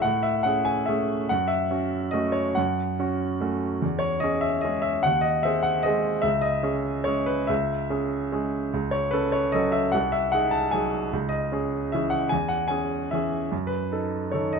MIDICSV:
0, 0, Header, 1, 2, 480
1, 0, Start_track
1, 0, Key_signature, 4, "minor"
1, 0, Tempo, 421644
1, 43, Time_signature, 3, 2, 24, 8
1, 3884, Tempo, 405132
1, 7724, Tempo, 428878
1, 8684, Tempo, 401338
1, 17156, End_track
2, 0, Start_track
2, 0, Title_t, "Grand piano"
2, 0, Program_c, 0, 0
2, 0, Control_c, 0, 64, 127
2, 20, Note_on_c, 0, 78, 80
2, 48, Note_on_c, 0, 45, 52
2, 63, Control_c, 0, 64, 0
2, 237, Control_c, 0, 64, 127
2, 258, Note_on_c, 0, 76, 75
2, 266, Note_off_c, 0, 78, 0
2, 491, Note_on_c, 0, 78, 76
2, 502, Note_off_c, 0, 45, 0
2, 504, Note_off_c, 0, 76, 0
2, 517, Note_on_c, 0, 61, 39
2, 530, Note_on_c, 0, 68, 46
2, 737, Note_on_c, 0, 80, 75
2, 742, Note_off_c, 0, 78, 0
2, 957, Note_off_c, 0, 61, 0
2, 963, Note_off_c, 0, 68, 0
2, 976, Note_on_c, 0, 76, 68
2, 992, Note_off_c, 0, 80, 0
2, 1003, Note_on_c, 0, 57, 39
2, 1011, Note_on_c, 0, 68, 40
2, 1014, Note_on_c, 0, 61, 41
2, 1437, Note_off_c, 0, 57, 0
2, 1441, Note_off_c, 0, 68, 0
2, 1443, Note_off_c, 0, 61, 0
2, 1469, Note_off_c, 0, 76, 0
2, 1472, Note_on_c, 0, 78, 80
2, 1490, Note_on_c, 0, 42, 52
2, 1500, Control_c, 0, 64, 0
2, 1680, Note_on_c, 0, 76, 76
2, 1682, Control_c, 0, 64, 127
2, 1708, Note_off_c, 0, 78, 0
2, 1935, Note_off_c, 0, 42, 0
2, 1945, Note_on_c, 0, 61, 40
2, 1952, Note_on_c, 0, 66, 43
2, 2375, Note_off_c, 0, 61, 0
2, 2379, Note_off_c, 0, 66, 0
2, 2402, Note_on_c, 0, 75, 73
2, 2405, Note_off_c, 0, 76, 0
2, 2428, Note_on_c, 0, 61, 38
2, 2430, Note_on_c, 0, 57, 40
2, 2434, Note_on_c, 0, 66, 43
2, 2643, Note_on_c, 0, 73, 67
2, 2665, Note_off_c, 0, 75, 0
2, 2885, Note_off_c, 0, 61, 0
2, 2886, Note_off_c, 0, 57, 0
2, 2887, Note_off_c, 0, 66, 0
2, 2902, Note_on_c, 0, 78, 69
2, 2911, Note_off_c, 0, 73, 0
2, 2928, Note_on_c, 0, 42, 52
2, 2947, Control_c, 0, 64, 0
2, 3150, Control_c, 0, 64, 127
2, 3389, Note_off_c, 0, 42, 0
2, 3411, Note_on_c, 0, 61, 42
2, 3412, Note_on_c, 0, 66, 44
2, 3841, Note_off_c, 0, 61, 0
2, 3842, Note_off_c, 0, 66, 0
2, 3876, Note_on_c, 0, 57, 40
2, 3887, Note_on_c, 0, 61, 39
2, 3887, Note_on_c, 0, 66, 43
2, 4115, Note_off_c, 0, 78, 0
2, 4315, Note_off_c, 0, 57, 0
2, 4320, Note_off_c, 0, 61, 0
2, 4321, Note_off_c, 0, 66, 0
2, 4366, Note_on_c, 0, 40, 55
2, 4388, Control_c, 0, 64, 0
2, 4545, Control_c, 0, 64, 127
2, 4565, Note_on_c, 0, 73, 72
2, 4818, Note_on_c, 0, 75, 79
2, 4821, Note_off_c, 0, 73, 0
2, 4826, Note_off_c, 0, 40, 0
2, 4854, Note_on_c, 0, 61, 41
2, 4861, Note_on_c, 0, 68, 47
2, 5066, Note_on_c, 0, 76, 77
2, 5068, Note_off_c, 0, 75, 0
2, 5281, Note_off_c, 0, 61, 0
2, 5285, Note_off_c, 0, 68, 0
2, 5306, Note_on_c, 0, 75, 72
2, 5315, Note_off_c, 0, 76, 0
2, 5338, Note_on_c, 0, 56, 42
2, 5341, Note_on_c, 0, 68, 45
2, 5347, Note_on_c, 0, 61, 41
2, 5550, Note_on_c, 0, 76, 77
2, 5557, Note_off_c, 0, 75, 0
2, 5761, Note_off_c, 0, 56, 0
2, 5763, Note_off_c, 0, 68, 0
2, 5766, Note_off_c, 0, 61, 0
2, 5793, Note_off_c, 0, 76, 0
2, 5799, Note_on_c, 0, 78, 91
2, 5822, Control_c, 0, 64, 0
2, 5826, Note_on_c, 0, 39, 57
2, 6017, Note_on_c, 0, 75, 74
2, 6030, Control_c, 0, 64, 127
2, 6035, Note_off_c, 0, 78, 0
2, 6269, Note_off_c, 0, 75, 0
2, 6275, Note_on_c, 0, 76, 81
2, 6277, Note_off_c, 0, 39, 0
2, 6300, Note_on_c, 0, 60, 43
2, 6306, Note_on_c, 0, 68, 46
2, 6508, Note_on_c, 0, 78, 81
2, 6523, Note_off_c, 0, 76, 0
2, 6734, Note_off_c, 0, 60, 0
2, 6737, Note_off_c, 0, 68, 0
2, 6748, Note_on_c, 0, 75, 79
2, 6763, Note_off_c, 0, 78, 0
2, 6778, Note_on_c, 0, 60, 43
2, 6779, Note_on_c, 0, 56, 41
2, 6781, Note_on_c, 0, 68, 46
2, 7205, Note_off_c, 0, 60, 0
2, 7206, Note_off_c, 0, 56, 0
2, 7207, Note_off_c, 0, 68, 0
2, 7207, Note_on_c, 0, 76, 90
2, 7229, Note_on_c, 0, 37, 54
2, 7237, Note_off_c, 0, 75, 0
2, 7268, Control_c, 0, 64, 0
2, 7428, Control_c, 0, 64, 127
2, 7442, Note_on_c, 0, 75, 76
2, 7462, Note_off_c, 0, 76, 0
2, 7698, Note_off_c, 0, 37, 0
2, 7698, Note_on_c, 0, 61, 43
2, 7705, Note_on_c, 0, 68, 48
2, 8139, Note_off_c, 0, 61, 0
2, 8142, Note_off_c, 0, 68, 0
2, 8158, Note_on_c, 0, 73, 76
2, 8176, Note_off_c, 0, 75, 0
2, 8177, Note_on_c, 0, 56, 43
2, 8191, Note_on_c, 0, 68, 45
2, 8195, Note_on_c, 0, 61, 41
2, 8407, Note_on_c, 0, 71, 73
2, 8424, Note_off_c, 0, 73, 0
2, 8629, Note_off_c, 0, 56, 0
2, 8636, Note_off_c, 0, 68, 0
2, 8638, Note_off_c, 0, 61, 0
2, 8642, Note_on_c, 0, 76, 76
2, 8665, Note_off_c, 0, 71, 0
2, 8666, Note_on_c, 0, 37, 56
2, 8703, Control_c, 0, 64, 0
2, 8911, Control_c, 0, 64, 127
2, 9143, Note_off_c, 0, 37, 0
2, 9151, Note_on_c, 0, 68, 49
2, 9153, Note_on_c, 0, 61, 43
2, 9603, Note_off_c, 0, 68, 0
2, 9604, Note_off_c, 0, 61, 0
2, 9652, Note_on_c, 0, 56, 41
2, 9657, Note_on_c, 0, 61, 43
2, 9666, Note_on_c, 0, 68, 45
2, 9880, Note_off_c, 0, 76, 0
2, 10088, Note_off_c, 0, 56, 0
2, 10091, Note_off_c, 0, 61, 0
2, 10095, Note_off_c, 0, 68, 0
2, 10151, Note_on_c, 0, 37, 55
2, 10161, Control_c, 0, 64, 0
2, 10330, Control_c, 0, 64, 127
2, 10361, Note_on_c, 0, 73, 75
2, 10595, Note_on_c, 0, 71, 78
2, 10604, Note_off_c, 0, 37, 0
2, 10606, Note_off_c, 0, 73, 0
2, 10625, Note_on_c, 0, 61, 42
2, 10627, Note_on_c, 0, 69, 47
2, 10847, Note_off_c, 0, 71, 0
2, 10849, Note_on_c, 0, 73, 72
2, 11061, Note_off_c, 0, 61, 0
2, 11062, Note_off_c, 0, 69, 0
2, 11088, Note_on_c, 0, 75, 80
2, 11099, Note_off_c, 0, 73, 0
2, 11112, Note_on_c, 0, 61, 41
2, 11113, Note_on_c, 0, 54, 43
2, 11123, Note_on_c, 0, 69, 44
2, 11327, Note_on_c, 0, 76, 77
2, 11338, Note_off_c, 0, 75, 0
2, 11538, Note_off_c, 0, 54, 0
2, 11538, Note_off_c, 0, 61, 0
2, 11543, Note_off_c, 0, 69, 0
2, 11562, Note_on_c, 0, 78, 81
2, 11570, Note_off_c, 0, 76, 0
2, 11588, Note_on_c, 0, 36, 56
2, 11603, Control_c, 0, 64, 0
2, 11805, Note_off_c, 0, 78, 0
2, 11805, Note_on_c, 0, 76, 78
2, 11815, Control_c, 0, 64, 127
2, 12042, Note_off_c, 0, 36, 0
2, 12042, Note_on_c, 0, 78, 85
2, 12048, Note_off_c, 0, 76, 0
2, 12068, Note_on_c, 0, 63, 44
2, 12069, Note_on_c, 0, 68, 49
2, 12273, Note_on_c, 0, 81, 82
2, 12288, Note_off_c, 0, 78, 0
2, 12497, Note_off_c, 0, 63, 0
2, 12498, Note_off_c, 0, 68, 0
2, 12514, Note_on_c, 0, 80, 70
2, 12526, Note_off_c, 0, 81, 0
2, 12534, Note_on_c, 0, 54, 41
2, 12549, Note_on_c, 0, 63, 42
2, 12554, Note_on_c, 0, 68, 45
2, 12963, Note_off_c, 0, 54, 0
2, 12971, Note_off_c, 0, 63, 0
2, 12974, Note_off_c, 0, 68, 0
2, 13000, Note_off_c, 0, 80, 0
2, 13014, Note_on_c, 0, 37, 56
2, 13029, Control_c, 0, 64, 0
2, 13201, Note_on_c, 0, 75, 72
2, 13206, Control_c, 0, 64, 127
2, 13469, Note_off_c, 0, 37, 0
2, 13481, Note_on_c, 0, 61, 42
2, 13490, Note_on_c, 0, 68, 45
2, 13918, Note_off_c, 0, 61, 0
2, 13922, Note_off_c, 0, 68, 0
2, 13945, Note_off_c, 0, 75, 0
2, 13960, Note_on_c, 0, 76, 59
2, 13985, Note_on_c, 0, 52, 39
2, 13994, Note_on_c, 0, 61, 38
2, 13995, Note_on_c, 0, 68, 42
2, 14173, Note_on_c, 0, 78, 75
2, 14203, Note_off_c, 0, 76, 0
2, 14402, Note_off_c, 0, 52, 0
2, 14404, Note_on_c, 0, 80, 80
2, 14407, Note_off_c, 0, 61, 0
2, 14407, Note_off_c, 0, 68, 0
2, 14422, Note_off_c, 0, 78, 0
2, 14436, Note_on_c, 0, 40, 51
2, 14457, Control_c, 0, 64, 0
2, 14633, Note_on_c, 0, 78, 70
2, 14653, Note_off_c, 0, 80, 0
2, 14654, Control_c, 0, 64, 127
2, 14862, Note_on_c, 0, 80, 76
2, 14890, Note_off_c, 0, 78, 0
2, 14891, Note_on_c, 0, 61, 39
2, 14893, Note_off_c, 0, 40, 0
2, 14901, Note_on_c, 0, 68, 44
2, 15340, Note_off_c, 0, 61, 0
2, 15345, Note_off_c, 0, 68, 0
2, 15373, Note_off_c, 0, 80, 0
2, 15381, Note_on_c, 0, 76, 60
2, 15404, Note_on_c, 0, 52, 39
2, 15414, Note_on_c, 0, 68, 41
2, 15417, Note_on_c, 0, 61, 37
2, 15826, Note_off_c, 0, 52, 0
2, 15831, Note_off_c, 0, 68, 0
2, 15833, Note_off_c, 0, 61, 0
2, 15861, Note_off_c, 0, 76, 0
2, 15866, Note_on_c, 0, 42, 48
2, 15887, Control_c, 0, 64, 0
2, 16050, Note_on_c, 0, 71, 63
2, 16076, Control_c, 0, 64, 127
2, 16326, Note_off_c, 0, 42, 0
2, 16345, Note_on_c, 0, 63, 37
2, 16358, Note_on_c, 0, 69, 39
2, 16792, Note_off_c, 0, 63, 0
2, 16798, Note_off_c, 0, 69, 0
2, 16812, Note_off_c, 0, 71, 0
2, 16822, Note_on_c, 0, 73, 55
2, 16848, Note_on_c, 0, 51, 35
2, 16851, Note_on_c, 0, 69, 36
2, 16855, Note_on_c, 0, 63, 34
2, 17075, Note_on_c, 0, 75, 63
2, 17078, Note_off_c, 0, 73, 0
2, 17156, Note_off_c, 0, 51, 0
2, 17156, Note_off_c, 0, 63, 0
2, 17156, Note_off_c, 0, 69, 0
2, 17156, Note_off_c, 0, 75, 0
2, 17156, End_track
0, 0, End_of_file